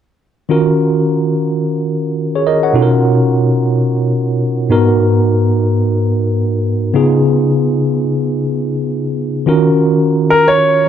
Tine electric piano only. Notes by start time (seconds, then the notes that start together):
0.49 D#3 C#4 F4 F#4 A#4
2.35 G#4 C#5
2.47 A#4 D#5
2.63 C#5 F#5
2.73 B2 C#4 D#4 F4 F#4 A4
2.82 A#4
4.69 G#2 B3 D#4 F#4 A#4
6.93 C#3 B3 D#4 F4 G#4
9.46 D#3 C#4 F4 F#4 A#4